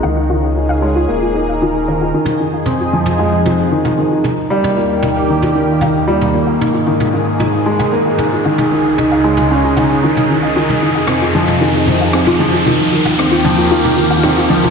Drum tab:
SH |----------------|----------------|----------------|----------------|
SD |----------------|----------------|----------------|----------------|
T2 |----------------|-o--o--o--o--o--|o--o--o--o--o--o|--o--o--o--o--o-|

SH |----------------|xxx-x-x-x-x-x-x-|xxx-x-x-x-x-x-x-|
SD |----------------|----r-------r---|----r-------r---|
T2 |-o--o--o--o--o--|-o--o--o--o--o--|o--o--o--o--o--o|